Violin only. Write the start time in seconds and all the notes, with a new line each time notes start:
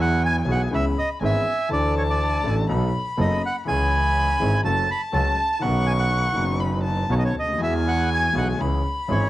Already playing: G#5
0.74 B5
1.22 G#5
1.70 A5
2.70 B5
3.66 B5
4.66 A5
5.62 C#6
6.60 B5
6.83 A5
7.59 G#5
8.60 B5